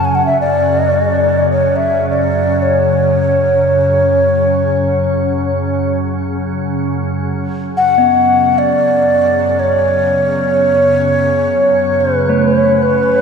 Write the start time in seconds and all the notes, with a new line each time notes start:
Already playing: F#2 C#3
0.05 G#5
0.15 F#5
0.26 E5
0.41 D5
1.52 C#5
1.76 E5
2.09 D5
2.62 C#5
7.31 F#2 C#3
7.77 F#5
7.98 B3
8.58 D5
9.59 C#5
12.01 B4
12.29 A3
12.46 C#5
12.82 B4